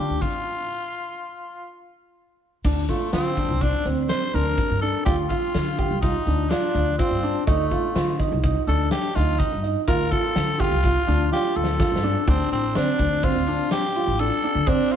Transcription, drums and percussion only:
0.22 kick medium
0.22 crash medium
2.64 kick medium
2.64 crash medium
2.64 shaker medium
2.89 kick medium
2.89 closed hi-hat medium
3.13 snare loud
3.13 closed hi-hat medium
3.37 kick medium
3.37 closed hi-hat medium
3.61 kick medium
3.61 closed hi-hat medium
3.61 shaker medium
3.85 snare soft
3.85 closed hi-hat medium
4.09 snare loud
4.09 closed hi-hat medium
4.34 snare soft
4.34 closed hi-hat medium
4.34 shaker soft
4.57 kick loud
4.57 closed hi-hat medium
4.57 shaker soft
4.82 closed hi-hat medium
5.06 kick loud
5.06 closed hi-hat medium
5.06 shaker medium
5.30 kick medium
5.30 closed hi-hat medium
5.55 snare loud
5.55 closed hi-hat medium
5.78 kick medium
5.78 closed hi-hat medium
6.02 kick loud
6.02 closed hi-hat medium
6.02 shaker medium
6.27 closed hi-hat medium
6.51 snare loud
6.51 closed hi-hat medium
6.75 closed hi-hat medium
6.75 shaker soft
6.99 kick loud
6.99 closed hi-hat medium
6.99 shaker soft
7.23 closed hi-hat medium
7.47 kick loud
7.47 closed hi-hat medium
7.47 shaker medium
7.71 kick medium
7.71 closed hi-hat medium
7.96 snare loud
7.96 closed hi-hat medium
8.19 kick medium
8.19 snare soft
8.19 closed hi-hat medium
8.44 kick loud
8.44 closed hi-hat medium
8.44 shaker medium
8.67 closed hi-hat medium
8.91 snare loud
8.91 closed hi-hat medium
9.15 snare soft
9.15 closed hi-hat medium
9.15 shaker soft
9.40 kick loud
9.40 closed hi-hat medium
9.40 shaker soft
9.64 closed hi-hat medium
9.87 kick loud
9.87 closed hi-hat medium
9.87 shaker medium
10.12 kick medium
10.12 closed hi-hat medium
10.12 shaker soft
10.36 snare loud
10.36 closed hi-hat medium
10.36 shaker soft
10.60 kick medium
10.60 closed hi-hat medium
10.60 shaker soft
10.84 kick loud
10.84 closed hi-hat medium
10.84 shaker medium
11.08 closed hi-hat medium
11.08 shaker soft
11.32 snare medium
11.56 shaker soft
11.64 snare medium
11.80 kick loud
11.80 snare medium
11.96 snare loud
12.04 shaker soft
12.28 kick loud
12.28 ride medium
12.28 shaker medium
12.52 ride medium
12.75 snare loud
12.75 ride medium
12.99 kick medium
12.99 ride medium
13.23 kick loud
13.23 ride medium
13.23 shaker medium
13.47 ride medium
13.71 snare loud
13.71 ride medium
13.95 ride medium
13.95 shaker soft
14.19 ride medium
14.43 ride medium
14.66 kick loud
14.66 ride medium
14.66 shaker medium
14.91 ride medium

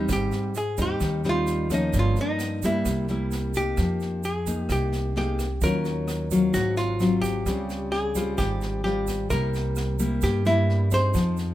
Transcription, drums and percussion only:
0.09 kick medium
0.09 cross-stick medium
0.09 snare soft
0.09 shaker medium
0.31 snare soft
0.31 shaker soft
0.55 snare soft
0.55 shaker medium
0.77 kick soft
0.77 snare soft
0.77 shaker medium
1.00 kick medium
1.00 cross-stick medium
1.00 snare soft
1.00 shaker medium
1.24 snare soft
1.24 shaker soft
1.47 snare soft
1.47 shaker medium
1.70 kick soft
1.70 cross-stick medium
1.70 snare soft
1.70 shaker medium
1.93 kick medium
1.93 snare soft
1.93 shaker medium
2.16 snare soft
2.16 shaker soft
2.39 cross-stick medium
2.39 snare soft
2.39 shaker medium
2.62 kick soft
2.62 snare soft
2.62 shaker medium
2.85 kick medium
2.85 cross-stick medium
2.85 snare soft
2.85 shaker medium
3.08 snare soft
3.08 shaker soft
3.31 snare soft
3.31 shaker medium
3.54 kick soft
3.54 snare soft
3.54 shaker medium
3.77 kick medium
3.77 cross-stick medium
3.77 snare soft
3.77 shaker medium
4.00 snare soft
4.00 shaker soft
4.23 snare soft
4.23 shaker medium
4.46 kick soft
4.46 snare soft
4.46 shaker medium
4.69 kick medium
4.69 cross-stick medium
4.69 snare soft
4.69 shaker medium
4.92 snare soft
4.92 shaker soft
5.16 snare soft
5.39 kick soft
5.39 cross-stick medium
5.39 snare soft
5.39 shaker medium
5.61 kick medium
5.61 snare soft
5.61 shaker medium
5.85 snare soft
5.85 shaker soft
6.08 cross-stick medium
6.08 snare soft
6.08 shaker medium
6.31 kick soft
6.31 snare soft
6.31 shaker medium
6.54 kick medium
6.54 cross-stick medium
6.54 snare soft
6.54 shaker medium
6.77 snare soft
6.77 shaker soft
7.00 snare soft
7.00 shaker soft
7.23 kick soft
7.23 snare soft
7.23 shaker medium
7.46 kick medium
7.46 cross-stick medium
7.46 snare soft
7.46 shaker medium
7.69 snare soft
7.69 shaker soft
7.93 snare soft
8.15 kick soft
8.15 snare soft
8.15 shaker medium
8.38 kick medium
8.38 cross-stick medium
8.38 snare soft
8.38 shaker medium
8.61 snare soft
8.61 shaker soft
8.86 snare soft
9.07 kick soft
9.07 cross-stick medium
9.07 snare soft
9.07 shaker medium
9.30 kick medium
9.30 snare soft
9.30 shaker medium
9.54 snare soft
9.54 shaker soft
9.76 cross-stick medium
9.76 snare soft
9.76 shaker medium
9.99 kick soft
9.99 snare soft
9.99 shaker medium
10.21 kick medium
10.21 cross-stick medium
10.21 snare soft
10.21 shaker medium
10.45 snare soft
10.45 shaker soft
10.70 snare soft
10.91 kick soft
10.91 snare soft
10.91 shaker medium
11.14 kick medium
11.14 cross-stick medium
11.14 snare soft
11.14 shaker medium
11.37 snare soft
11.37 shaker soft

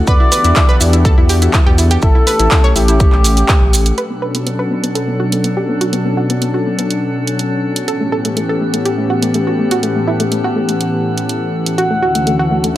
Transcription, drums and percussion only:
0.07 kick loud
0.07 closed hi-hat medium
0.07 maracas soft
0.32 open hi-hat loud
0.32 maracas loud
0.45 closed hi-hat medium
0.45 maracas soft
0.56 kick loud
0.56 clap loud
0.56 closed hi-hat medium
0.56 maracas soft
0.81 open hi-hat medium
0.81 maracas medium
0.93 closed hi-hat medium
0.93 maracas soft
1.05 kick loud
1.05 closed hi-hat medium
1.05 maracas soft
1.29 open hi-hat loud
1.29 maracas medium
1.42 closed hi-hat medium
1.42 maracas soft
1.53 kick loud
1.53 clap loud
1.53 closed hi-hat medium
1.53 maracas soft
1.78 open hi-hat medium
1.78 maracas medium
1.91 closed hi-hat medium
1.91 maracas soft
2.02 kick loud
2.02 closed hi-hat medium
2.02 maracas soft
2.27 open hi-hat loud
2.27 maracas medium
2.40 closed hi-hat medium
2.40 maracas medium
2.51 kick loud
2.51 clap loud
2.51 closed hi-hat medium
2.51 maracas soft
2.76 open hi-hat medium
2.76 maracas medium
2.88 closed hi-hat medium
2.88 maracas soft
3.00 kick loud
3.00 closed hi-hat medium
3.00 maracas soft
3.12 clap soft
3.24 open hi-hat loud
3.24 maracas medium
3.37 closed hi-hat medium
3.37 maracas medium
3.48 kick loud
3.48 clap loud
3.48 closed hi-hat medium
3.48 maracas soft
3.73 open hi-hat medium
3.73 maracas medium
3.86 closed hi-hat medium
3.86 maracas soft
3.98 closed hi-hat medium
4.35 closed hi-hat medium
4.47 closed hi-hat medium
4.84 closed hi-hat medium
4.95 closed hi-hat medium
5.32 closed hi-hat medium
5.44 closed hi-hat soft
5.81 closed hi-hat medium
5.93 closed hi-hat soft
6.30 closed hi-hat medium
6.42 closed hi-hat medium
6.79 closed hi-hat medium
6.91 closed hi-hat medium
7.27 closed hi-hat medium
7.39 closed hi-hat soft
7.76 closed hi-hat medium
7.88 closed hi-hat soft
8.25 closed hi-hat medium
8.37 closed hi-hat soft
8.74 closed hi-hat medium
8.86 closed hi-hat soft
9.23 closed hi-hat medium
9.34 closed hi-hat soft
9.71 closed hi-hat medium
9.83 closed hi-hat soft
10.20 closed hi-hat medium
10.32 closed hi-hat soft
10.69 closed hi-hat medium
10.81 closed hi-hat soft
11.18 closed hi-hat medium
11.29 closed hi-hat soft
11.66 closed hi-hat medium
11.78 closed hi-hat soft
12.15 closed hi-hat medium
12.27 closed hi-hat soft
12.64 closed hi-hat medium

